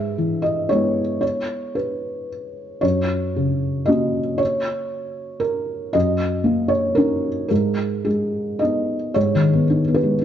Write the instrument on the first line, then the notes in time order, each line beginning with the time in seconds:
felt piano
Already playing: G#2 E5
0.18 E3
0.42 D#5
0.69 G#3 B3 E4 C#5
1.21 C#5
1.75 B4
2.81 F#2 C#5
3.36 C#3
3.85 A#3 C#4 F#4 D#5
4.38 C#5
5.40 A#4
5.93 F#2 D#5
6.44 A#3
6.68 C#5
6.95 C#4 D#4 A#4
7.48 G#2 A#4
8.05 G#3 G#4
8.59 B3 D#4 D#5
9.14 G#2 C#5
9.35 D#3
9.53 B3
9.70 D#4
9.88 B3
9.94 B4
10.03 G#3
10.21 D#4